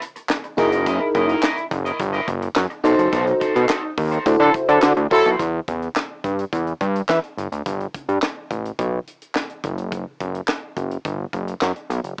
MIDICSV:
0, 0, Header, 1, 7, 480
1, 0, Start_track
1, 0, Tempo, 566038
1, 733, Time_signature, 4, 2, 24, 8
1, 10346, End_track
2, 0, Start_track
2, 0, Title_t, "Clean electric guitar"
2, 0, Program_c, 0, 27
2, 495, Note_on_c, 0, 64, 85
2, 502, Note_on_c, 0, 70, 85
2, 508, Note_on_c, 0, 75, 101
2, 604, Note_off_c, 0, 75, 0
2, 611, Note_off_c, 0, 70, 0
2, 614, Note_on_c, 0, 75, 60
2, 617, Note_off_c, 0, 64, 0
2, 622, Note_on_c, 0, 70, 53
2, 627, Note_on_c, 0, 64, 49
2, 720, Note_off_c, 0, 64, 0
2, 730, Note_off_c, 0, 70, 0
2, 730, Note_on_c, 0, 64, 89
2, 735, Note_off_c, 0, 75, 0
2, 740, Note_on_c, 0, 70, 87
2, 745, Note_on_c, 0, 75, 100
2, 845, Note_off_c, 0, 75, 0
2, 856, Note_off_c, 0, 70, 0
2, 908, Note_off_c, 0, 64, 0
2, 972, Note_on_c, 0, 64, 59
2, 980, Note_on_c, 0, 70, 63
2, 988, Note_on_c, 0, 75, 70
2, 1085, Note_off_c, 0, 75, 0
2, 1093, Note_off_c, 0, 70, 0
2, 1095, Note_on_c, 0, 75, 82
2, 1100, Note_off_c, 0, 64, 0
2, 1103, Note_on_c, 0, 70, 67
2, 1111, Note_on_c, 0, 64, 58
2, 1203, Note_off_c, 0, 64, 0
2, 1211, Note_off_c, 0, 70, 0
2, 1213, Note_on_c, 0, 64, 89
2, 1217, Note_off_c, 0, 75, 0
2, 1221, Note_on_c, 0, 70, 99
2, 1227, Note_on_c, 0, 75, 95
2, 1321, Note_off_c, 0, 75, 0
2, 1333, Note_off_c, 0, 70, 0
2, 1389, Note_off_c, 0, 64, 0
2, 1570, Note_on_c, 0, 75, 58
2, 1577, Note_on_c, 0, 70, 53
2, 1583, Note_on_c, 0, 64, 58
2, 1681, Note_off_c, 0, 64, 0
2, 1686, Note_off_c, 0, 70, 0
2, 1689, Note_off_c, 0, 75, 0
2, 1805, Note_on_c, 0, 75, 92
2, 1813, Note_on_c, 0, 70, 80
2, 1821, Note_on_c, 0, 64, 77
2, 1921, Note_off_c, 0, 64, 0
2, 1926, Note_off_c, 0, 70, 0
2, 1931, Note_off_c, 0, 75, 0
2, 2407, Note_on_c, 0, 63, 76
2, 2415, Note_on_c, 0, 69, 82
2, 2423, Note_on_c, 0, 72, 90
2, 2516, Note_off_c, 0, 72, 0
2, 2524, Note_off_c, 0, 69, 0
2, 2526, Note_on_c, 0, 72, 59
2, 2529, Note_off_c, 0, 63, 0
2, 2534, Note_on_c, 0, 69, 64
2, 2540, Note_on_c, 0, 63, 55
2, 2635, Note_off_c, 0, 63, 0
2, 2642, Note_off_c, 0, 69, 0
2, 2645, Note_on_c, 0, 63, 94
2, 2649, Note_off_c, 0, 72, 0
2, 2652, Note_on_c, 0, 69, 109
2, 2659, Note_on_c, 0, 72, 104
2, 2753, Note_off_c, 0, 72, 0
2, 2762, Note_off_c, 0, 69, 0
2, 2825, Note_off_c, 0, 63, 0
2, 2883, Note_on_c, 0, 63, 65
2, 2891, Note_on_c, 0, 69, 66
2, 2896, Note_on_c, 0, 72, 66
2, 2993, Note_off_c, 0, 72, 0
2, 3001, Note_off_c, 0, 69, 0
2, 3004, Note_on_c, 0, 72, 62
2, 3007, Note_off_c, 0, 63, 0
2, 3011, Note_on_c, 0, 69, 60
2, 3017, Note_on_c, 0, 63, 48
2, 3113, Note_off_c, 0, 63, 0
2, 3124, Note_off_c, 0, 69, 0
2, 3124, Note_on_c, 0, 63, 73
2, 3129, Note_off_c, 0, 72, 0
2, 3134, Note_on_c, 0, 69, 81
2, 3139, Note_on_c, 0, 72, 84
2, 3236, Note_off_c, 0, 72, 0
2, 3246, Note_off_c, 0, 69, 0
2, 3304, Note_off_c, 0, 63, 0
2, 3488, Note_on_c, 0, 72, 59
2, 3495, Note_on_c, 0, 69, 53
2, 3502, Note_on_c, 0, 63, 50
2, 3605, Note_off_c, 0, 63, 0
2, 3608, Note_off_c, 0, 72, 0
2, 3609, Note_off_c, 0, 69, 0
2, 3727, Note_on_c, 0, 72, 80
2, 3736, Note_on_c, 0, 66, 73
2, 3741, Note_on_c, 0, 64, 69
2, 3840, Note_off_c, 0, 64, 0
2, 3847, Note_off_c, 0, 66, 0
2, 3851, Note_off_c, 0, 72, 0
2, 4329, Note_on_c, 0, 64, 91
2, 4335, Note_on_c, 0, 66, 99
2, 4342, Note_on_c, 0, 72, 87
2, 4439, Note_off_c, 0, 72, 0
2, 4446, Note_off_c, 0, 66, 0
2, 4449, Note_on_c, 0, 72, 65
2, 4453, Note_off_c, 0, 64, 0
2, 4456, Note_on_c, 0, 66, 60
2, 4463, Note_on_c, 0, 64, 55
2, 4589, Note_off_c, 0, 72, 0
2, 4592, Note_off_c, 0, 66, 0
2, 4596, Note_off_c, 0, 64, 0
2, 10346, End_track
3, 0, Start_track
3, 0, Title_t, "FM electric piano"
3, 0, Program_c, 1, 5
3, 485, Note_on_c, 1, 63, 85
3, 489, Note_on_c, 1, 64, 78
3, 490, Note_on_c, 1, 68, 83
3, 492, Note_on_c, 1, 70, 94
3, 1257, Note_off_c, 1, 63, 0
3, 1259, Note_off_c, 1, 64, 0
3, 1259, Note_off_c, 1, 68, 0
3, 1261, Note_off_c, 1, 70, 0
3, 2405, Note_on_c, 1, 63, 88
3, 2408, Note_on_c, 1, 66, 81
3, 2410, Note_on_c, 1, 69, 79
3, 2414, Note_on_c, 1, 72, 98
3, 3177, Note_off_c, 1, 63, 0
3, 3178, Note_off_c, 1, 66, 0
3, 3179, Note_off_c, 1, 69, 0
3, 3182, Note_off_c, 1, 72, 0
3, 3609, Note_on_c, 1, 64, 81
3, 3611, Note_on_c, 1, 66, 76
3, 3612, Note_on_c, 1, 69, 80
3, 3615, Note_on_c, 1, 72, 97
3, 4187, Note_off_c, 1, 64, 0
3, 4188, Note_off_c, 1, 66, 0
3, 4189, Note_off_c, 1, 69, 0
3, 4190, Note_off_c, 1, 72, 0
3, 4333, Note_on_c, 1, 64, 81
3, 4335, Note_on_c, 1, 66, 75
3, 4337, Note_on_c, 1, 69, 74
3, 4339, Note_on_c, 1, 72, 87
3, 4488, Note_off_c, 1, 64, 0
3, 4489, Note_off_c, 1, 66, 0
3, 4490, Note_off_c, 1, 69, 0
3, 4492, Note_off_c, 1, 72, 0
3, 10346, End_track
4, 0, Start_track
4, 0, Title_t, "Horn section"
4, 0, Program_c, 2, 61
4, 3731, Note_on_c, 2, 54, 81
4, 3732, Note_on_c, 2, 64, 85
4, 3732, Note_on_c, 2, 69, 94
4, 3833, Note_off_c, 2, 54, 0
4, 3834, Note_off_c, 2, 64, 0
4, 3834, Note_off_c, 2, 69, 0
4, 3975, Note_on_c, 2, 54, 82
4, 3975, Note_on_c, 2, 69, 85
4, 3976, Note_on_c, 2, 64, 81
4, 4076, Note_off_c, 2, 54, 0
4, 4076, Note_off_c, 2, 69, 0
4, 4077, Note_off_c, 2, 64, 0
4, 4338, Note_on_c, 2, 64, 97
4, 4339, Note_on_c, 2, 54, 93
4, 4340, Note_on_c, 2, 69, 106
4, 4490, Note_off_c, 2, 54, 0
4, 4490, Note_off_c, 2, 64, 0
4, 4490, Note_off_c, 2, 69, 0
4, 10346, End_track
5, 0, Start_track
5, 0, Title_t, "Analog synth bass"
5, 0, Program_c, 3, 38
5, 493, Note_on_c, 3, 30, 105
5, 844, Note_off_c, 3, 30, 0
5, 975, Note_on_c, 3, 30, 100
5, 1150, Note_off_c, 3, 30, 0
5, 1452, Note_on_c, 3, 30, 84
5, 1628, Note_off_c, 3, 30, 0
5, 1693, Note_on_c, 3, 31, 100
5, 1869, Note_off_c, 3, 31, 0
5, 1933, Note_on_c, 3, 30, 91
5, 2108, Note_off_c, 3, 30, 0
5, 2171, Note_on_c, 3, 42, 96
5, 2259, Note_off_c, 3, 42, 0
5, 2409, Note_on_c, 3, 35, 109
5, 2498, Note_off_c, 3, 35, 0
5, 2530, Note_on_c, 3, 30, 81
5, 2619, Note_off_c, 3, 30, 0
5, 2651, Note_on_c, 3, 35, 99
5, 2828, Note_off_c, 3, 35, 0
5, 3016, Note_on_c, 3, 47, 99
5, 3103, Note_off_c, 3, 47, 0
5, 3372, Note_on_c, 3, 39, 90
5, 3548, Note_off_c, 3, 39, 0
5, 3612, Note_on_c, 3, 38, 106
5, 3700, Note_off_c, 3, 38, 0
5, 3729, Note_on_c, 3, 50, 99
5, 3818, Note_off_c, 3, 50, 0
5, 3973, Note_on_c, 3, 50, 98
5, 4061, Note_off_c, 3, 50, 0
5, 4092, Note_on_c, 3, 50, 102
5, 4180, Note_off_c, 3, 50, 0
5, 4211, Note_on_c, 3, 38, 86
5, 4300, Note_off_c, 3, 38, 0
5, 4454, Note_on_c, 3, 35, 86
5, 4542, Note_off_c, 3, 35, 0
5, 4573, Note_on_c, 3, 40, 97
5, 4749, Note_off_c, 3, 40, 0
5, 4817, Note_on_c, 3, 40, 90
5, 4991, Note_off_c, 3, 40, 0
5, 5293, Note_on_c, 3, 43, 84
5, 5469, Note_off_c, 3, 43, 0
5, 5535, Note_on_c, 3, 40, 89
5, 5710, Note_off_c, 3, 40, 0
5, 5775, Note_on_c, 3, 43, 100
5, 5950, Note_off_c, 3, 43, 0
5, 6013, Note_on_c, 3, 52, 95
5, 6101, Note_off_c, 3, 52, 0
5, 6254, Note_on_c, 3, 31, 97
5, 6342, Note_off_c, 3, 31, 0
5, 6376, Note_on_c, 3, 38, 83
5, 6463, Note_off_c, 3, 38, 0
5, 6496, Note_on_c, 3, 31, 96
5, 6670, Note_off_c, 3, 31, 0
5, 6857, Note_on_c, 3, 43, 92
5, 6943, Note_off_c, 3, 43, 0
5, 7215, Note_on_c, 3, 33, 84
5, 7390, Note_off_c, 3, 33, 0
5, 7452, Note_on_c, 3, 35, 98
5, 7628, Note_off_c, 3, 35, 0
5, 8172, Note_on_c, 3, 30, 98
5, 8524, Note_off_c, 3, 30, 0
5, 8653, Note_on_c, 3, 30, 101
5, 8829, Note_off_c, 3, 30, 0
5, 9131, Note_on_c, 3, 30, 84
5, 9307, Note_off_c, 3, 30, 0
5, 9371, Note_on_c, 3, 31, 97
5, 9548, Note_off_c, 3, 31, 0
5, 9611, Note_on_c, 3, 30, 95
5, 9787, Note_off_c, 3, 30, 0
5, 9852, Note_on_c, 3, 42, 102
5, 9940, Note_off_c, 3, 42, 0
5, 10088, Note_on_c, 3, 35, 108
5, 10177, Note_off_c, 3, 35, 0
5, 10207, Note_on_c, 3, 30, 86
5, 10297, Note_off_c, 3, 30, 0
5, 10346, End_track
6, 0, Start_track
6, 0, Title_t, "Muted clean electric guitar strokes"
6, 16, Note_on_c, 9, 29, 53
6, 101, Note_off_c, 9, 29, 0
6, 135, Note_on_c, 9, 29, 49
6, 220, Note_off_c, 9, 29, 0
6, 257, Note_on_c, 9, 29, 48
6, 342, Note_off_c, 9, 29, 0
6, 375, Note_on_c, 9, 29, 56
6, 459, Note_off_c, 9, 29, 0
6, 855, Note_on_c, 9, 29, 57
6, 940, Note_off_c, 9, 29, 0
6, 1331, Note_on_c, 9, 29, 48
6, 1416, Note_off_c, 9, 29, 0
6, 1451, Note_on_c, 9, 29, 42
6, 1536, Note_off_c, 9, 29, 0
6, 1691, Note_on_c, 9, 29, 48
6, 1776, Note_off_c, 9, 29, 0
6, 1931, Note_on_c, 9, 29, 46
6, 2016, Note_off_c, 9, 29, 0
6, 2053, Note_on_c, 9, 29, 43
6, 2137, Note_off_c, 9, 29, 0
6, 2168, Note_on_c, 9, 29, 45
6, 2252, Note_off_c, 9, 29, 0
6, 2291, Note_on_c, 9, 29, 57
6, 2376, Note_off_c, 9, 29, 0
6, 2764, Note_on_c, 9, 29, 45
6, 2848, Note_off_c, 9, 29, 0
6, 3246, Note_on_c, 9, 29, 48
6, 3331, Note_off_c, 9, 29, 0
6, 3369, Note_on_c, 9, 29, 42
6, 3454, Note_off_c, 9, 29, 0
6, 3608, Note_on_c, 9, 29, 40
6, 3693, Note_off_c, 9, 29, 0
6, 3850, Note_on_c, 9, 29, 47
6, 3935, Note_off_c, 9, 29, 0
6, 3972, Note_on_c, 9, 29, 41
6, 4057, Note_off_c, 9, 29, 0
6, 4090, Note_on_c, 9, 29, 43
6, 4175, Note_off_c, 9, 29, 0
6, 4212, Note_on_c, 9, 29, 58
6, 4297, Note_off_c, 9, 29, 0
6, 10346, End_track
7, 0, Start_track
7, 0, Title_t, "Drums"
7, 15, Note_on_c, 9, 42, 82
7, 99, Note_off_c, 9, 42, 0
7, 135, Note_on_c, 9, 42, 54
7, 220, Note_off_c, 9, 42, 0
7, 249, Note_on_c, 9, 39, 82
7, 255, Note_on_c, 9, 38, 101
7, 334, Note_off_c, 9, 39, 0
7, 339, Note_off_c, 9, 38, 0
7, 372, Note_on_c, 9, 42, 39
7, 457, Note_off_c, 9, 42, 0
7, 493, Note_on_c, 9, 36, 94
7, 495, Note_on_c, 9, 42, 82
7, 578, Note_off_c, 9, 36, 0
7, 580, Note_off_c, 9, 42, 0
7, 611, Note_on_c, 9, 42, 57
7, 696, Note_off_c, 9, 42, 0
7, 733, Note_on_c, 9, 42, 105
7, 734, Note_on_c, 9, 36, 102
7, 817, Note_off_c, 9, 42, 0
7, 818, Note_off_c, 9, 36, 0
7, 975, Note_on_c, 9, 36, 107
7, 975, Note_on_c, 9, 42, 73
7, 1059, Note_off_c, 9, 36, 0
7, 1060, Note_off_c, 9, 42, 0
7, 1095, Note_on_c, 9, 42, 47
7, 1180, Note_off_c, 9, 42, 0
7, 1210, Note_on_c, 9, 39, 87
7, 1216, Note_on_c, 9, 38, 104
7, 1295, Note_off_c, 9, 39, 0
7, 1301, Note_off_c, 9, 38, 0
7, 1334, Note_on_c, 9, 42, 35
7, 1419, Note_off_c, 9, 42, 0
7, 1452, Note_on_c, 9, 36, 96
7, 1457, Note_on_c, 9, 42, 70
7, 1537, Note_off_c, 9, 36, 0
7, 1542, Note_off_c, 9, 42, 0
7, 1575, Note_on_c, 9, 42, 50
7, 1660, Note_off_c, 9, 42, 0
7, 1693, Note_on_c, 9, 36, 113
7, 1697, Note_on_c, 9, 42, 87
7, 1778, Note_off_c, 9, 36, 0
7, 1782, Note_off_c, 9, 42, 0
7, 1811, Note_on_c, 9, 42, 35
7, 1896, Note_off_c, 9, 42, 0
7, 1932, Note_on_c, 9, 36, 104
7, 1932, Note_on_c, 9, 42, 80
7, 2017, Note_off_c, 9, 36, 0
7, 2017, Note_off_c, 9, 42, 0
7, 2054, Note_on_c, 9, 42, 56
7, 2138, Note_off_c, 9, 42, 0
7, 2167, Note_on_c, 9, 39, 78
7, 2173, Note_on_c, 9, 38, 102
7, 2252, Note_off_c, 9, 39, 0
7, 2258, Note_off_c, 9, 38, 0
7, 2292, Note_on_c, 9, 42, 36
7, 2376, Note_off_c, 9, 42, 0
7, 2415, Note_on_c, 9, 42, 83
7, 2500, Note_off_c, 9, 42, 0
7, 2532, Note_on_c, 9, 42, 52
7, 2617, Note_off_c, 9, 42, 0
7, 2650, Note_on_c, 9, 42, 114
7, 2652, Note_on_c, 9, 36, 117
7, 2734, Note_off_c, 9, 42, 0
7, 2736, Note_off_c, 9, 36, 0
7, 2771, Note_on_c, 9, 42, 38
7, 2856, Note_off_c, 9, 42, 0
7, 2893, Note_on_c, 9, 42, 70
7, 2894, Note_on_c, 9, 36, 102
7, 2978, Note_off_c, 9, 36, 0
7, 2978, Note_off_c, 9, 42, 0
7, 3015, Note_on_c, 9, 42, 48
7, 3100, Note_off_c, 9, 42, 0
7, 3128, Note_on_c, 9, 39, 96
7, 3134, Note_on_c, 9, 38, 112
7, 3213, Note_off_c, 9, 39, 0
7, 3218, Note_off_c, 9, 38, 0
7, 3372, Note_on_c, 9, 36, 100
7, 3374, Note_on_c, 9, 46, 67
7, 3456, Note_off_c, 9, 36, 0
7, 3459, Note_off_c, 9, 46, 0
7, 3494, Note_on_c, 9, 42, 49
7, 3578, Note_off_c, 9, 42, 0
7, 3612, Note_on_c, 9, 36, 118
7, 3612, Note_on_c, 9, 42, 86
7, 3696, Note_off_c, 9, 36, 0
7, 3697, Note_off_c, 9, 42, 0
7, 3852, Note_on_c, 9, 36, 101
7, 3852, Note_on_c, 9, 42, 83
7, 3936, Note_off_c, 9, 42, 0
7, 3937, Note_off_c, 9, 36, 0
7, 3973, Note_on_c, 9, 42, 53
7, 4057, Note_off_c, 9, 42, 0
7, 4088, Note_on_c, 9, 39, 83
7, 4094, Note_on_c, 9, 38, 104
7, 4173, Note_off_c, 9, 39, 0
7, 4179, Note_off_c, 9, 38, 0
7, 4210, Note_on_c, 9, 42, 37
7, 4295, Note_off_c, 9, 42, 0
7, 4333, Note_on_c, 9, 46, 87
7, 4334, Note_on_c, 9, 36, 93
7, 4418, Note_off_c, 9, 46, 0
7, 4419, Note_off_c, 9, 36, 0
7, 4454, Note_on_c, 9, 42, 48
7, 4539, Note_off_c, 9, 42, 0
7, 4574, Note_on_c, 9, 36, 97
7, 4574, Note_on_c, 9, 42, 99
7, 4659, Note_off_c, 9, 36, 0
7, 4659, Note_off_c, 9, 42, 0
7, 4815, Note_on_c, 9, 42, 65
7, 4817, Note_on_c, 9, 36, 96
7, 4900, Note_off_c, 9, 42, 0
7, 4901, Note_off_c, 9, 36, 0
7, 4937, Note_on_c, 9, 42, 39
7, 5022, Note_off_c, 9, 42, 0
7, 5052, Note_on_c, 9, 39, 87
7, 5058, Note_on_c, 9, 38, 95
7, 5137, Note_off_c, 9, 39, 0
7, 5142, Note_off_c, 9, 38, 0
7, 5294, Note_on_c, 9, 36, 89
7, 5297, Note_on_c, 9, 42, 63
7, 5379, Note_off_c, 9, 36, 0
7, 5382, Note_off_c, 9, 42, 0
7, 5418, Note_on_c, 9, 42, 48
7, 5502, Note_off_c, 9, 42, 0
7, 5536, Note_on_c, 9, 36, 100
7, 5539, Note_on_c, 9, 42, 84
7, 5621, Note_off_c, 9, 36, 0
7, 5623, Note_off_c, 9, 42, 0
7, 5656, Note_on_c, 9, 42, 32
7, 5741, Note_off_c, 9, 42, 0
7, 5775, Note_on_c, 9, 36, 90
7, 5776, Note_on_c, 9, 42, 75
7, 5860, Note_off_c, 9, 36, 0
7, 5861, Note_off_c, 9, 42, 0
7, 5899, Note_on_c, 9, 42, 51
7, 5984, Note_off_c, 9, 42, 0
7, 6011, Note_on_c, 9, 39, 72
7, 6017, Note_on_c, 9, 38, 90
7, 6096, Note_off_c, 9, 39, 0
7, 6102, Note_off_c, 9, 38, 0
7, 6135, Note_on_c, 9, 42, 31
7, 6220, Note_off_c, 9, 42, 0
7, 6259, Note_on_c, 9, 42, 78
7, 6344, Note_off_c, 9, 42, 0
7, 6377, Note_on_c, 9, 42, 52
7, 6462, Note_off_c, 9, 42, 0
7, 6496, Note_on_c, 9, 36, 101
7, 6496, Note_on_c, 9, 42, 97
7, 6580, Note_off_c, 9, 36, 0
7, 6581, Note_off_c, 9, 42, 0
7, 6617, Note_on_c, 9, 42, 34
7, 6701, Note_off_c, 9, 42, 0
7, 6736, Note_on_c, 9, 42, 65
7, 6737, Note_on_c, 9, 36, 91
7, 6821, Note_off_c, 9, 36, 0
7, 6821, Note_off_c, 9, 42, 0
7, 6857, Note_on_c, 9, 42, 40
7, 6941, Note_off_c, 9, 42, 0
7, 6970, Note_on_c, 9, 39, 78
7, 6976, Note_on_c, 9, 38, 105
7, 7055, Note_off_c, 9, 39, 0
7, 7061, Note_off_c, 9, 38, 0
7, 7213, Note_on_c, 9, 36, 90
7, 7217, Note_on_c, 9, 42, 68
7, 7298, Note_off_c, 9, 36, 0
7, 7302, Note_off_c, 9, 42, 0
7, 7337, Note_on_c, 9, 42, 48
7, 7422, Note_off_c, 9, 42, 0
7, 7453, Note_on_c, 9, 36, 115
7, 7456, Note_on_c, 9, 42, 81
7, 7538, Note_off_c, 9, 36, 0
7, 7541, Note_off_c, 9, 42, 0
7, 7694, Note_on_c, 9, 42, 67
7, 7779, Note_off_c, 9, 42, 0
7, 7815, Note_on_c, 9, 42, 48
7, 7900, Note_off_c, 9, 42, 0
7, 7929, Note_on_c, 9, 39, 72
7, 7934, Note_on_c, 9, 38, 93
7, 8013, Note_off_c, 9, 39, 0
7, 8019, Note_off_c, 9, 38, 0
7, 8051, Note_on_c, 9, 42, 34
7, 8136, Note_off_c, 9, 42, 0
7, 8173, Note_on_c, 9, 36, 87
7, 8173, Note_on_c, 9, 42, 77
7, 8257, Note_off_c, 9, 36, 0
7, 8257, Note_off_c, 9, 42, 0
7, 8291, Note_on_c, 9, 42, 50
7, 8376, Note_off_c, 9, 42, 0
7, 8409, Note_on_c, 9, 42, 96
7, 8412, Note_on_c, 9, 36, 104
7, 8494, Note_off_c, 9, 42, 0
7, 8496, Note_off_c, 9, 36, 0
7, 8652, Note_on_c, 9, 42, 70
7, 8653, Note_on_c, 9, 36, 85
7, 8737, Note_off_c, 9, 42, 0
7, 8738, Note_off_c, 9, 36, 0
7, 8774, Note_on_c, 9, 42, 42
7, 8859, Note_off_c, 9, 42, 0
7, 8886, Note_on_c, 9, 39, 82
7, 8892, Note_on_c, 9, 38, 99
7, 8971, Note_off_c, 9, 39, 0
7, 8977, Note_off_c, 9, 38, 0
7, 9131, Note_on_c, 9, 36, 93
7, 9132, Note_on_c, 9, 42, 66
7, 9215, Note_off_c, 9, 36, 0
7, 9217, Note_off_c, 9, 42, 0
7, 9253, Note_on_c, 9, 42, 47
7, 9338, Note_off_c, 9, 42, 0
7, 9371, Note_on_c, 9, 36, 109
7, 9374, Note_on_c, 9, 42, 82
7, 9456, Note_off_c, 9, 36, 0
7, 9458, Note_off_c, 9, 42, 0
7, 9609, Note_on_c, 9, 42, 71
7, 9610, Note_on_c, 9, 36, 94
7, 9694, Note_off_c, 9, 42, 0
7, 9695, Note_off_c, 9, 36, 0
7, 9733, Note_on_c, 9, 42, 50
7, 9818, Note_off_c, 9, 42, 0
7, 9846, Note_on_c, 9, 39, 71
7, 9852, Note_on_c, 9, 38, 93
7, 9931, Note_off_c, 9, 39, 0
7, 9937, Note_off_c, 9, 38, 0
7, 9970, Note_on_c, 9, 42, 33
7, 10054, Note_off_c, 9, 42, 0
7, 10092, Note_on_c, 9, 42, 76
7, 10177, Note_off_c, 9, 42, 0
7, 10208, Note_on_c, 9, 42, 44
7, 10293, Note_off_c, 9, 42, 0
7, 10346, End_track
0, 0, End_of_file